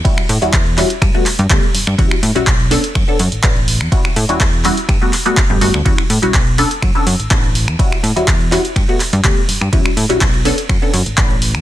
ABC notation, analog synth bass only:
X:1
M:4/4
L:1/16
Q:1/4=124
K:Edor
V:1 name="Analog synth bass" clef=bass
z2 A,, E,, E,,2 z2 G,, z2 G,, D,, z G,, G,, | E,, z A,, B,,, B,,,2 z2 F,, z F,, A,,, A,,,3 E,, | z2 A,, E,, E,,2 z2 G,, z4 G,,, G,,, D,, | E,, z A,, B,,, B,,,2 z2 F,, z F,, A,,, A,,,3 E,, |
z2 A,, E,, E,,2 z2 G,, z2 G,, D,, z G,, G,, | E,, z A,, B,,, B,,,2 z2 F,, z F,, A,,, A,,,3 E,, |]